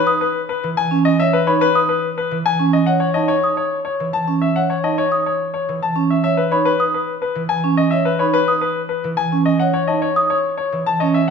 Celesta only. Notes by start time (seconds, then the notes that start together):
0.07 D#6
1.47 B5
1.75 D#6
3.16 A5
3.44 D#6
4.84 A5
5.12 D#6
6.52 B5
6.80 D#6
8.20 B5
8.48 D#6
9.88 A5
10.16 D#6